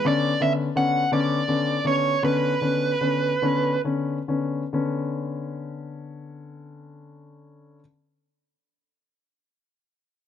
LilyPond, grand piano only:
\new Staff \with { instrumentName = "Grand piano" } { \time 6/8 \key b \minor \tempo 4. = 43 <d b cis'>8 <d b cis'>8 <d b cis'>8 <d b cis'>8 <d b cis'>8 <d b cis'>8 | <d b cis'>8 <d b cis'>8 <d b cis'>8 <d b cis'>8 <d b cis'>8 <d b cis'>8 | <d b cis'>2.~ | <d b cis'>2. | }